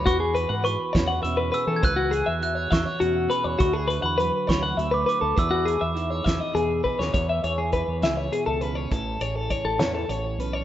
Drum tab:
HH |x-x-x-x-x-x-|x-x-x-x-x-x-|x-x-x-x-x-x-|x-x-x-x-x---|
SD |------o-----|------o-----|------o-----|------o----o|
BD |o-----o-----|o-----o-----|o-----o-----|o-----o---o-|

HH |x-x-x-x-x-x-|x-x-x-x-x-x-|
SD |------o-----|------o-----|
BD |o---o-------|o---o-------|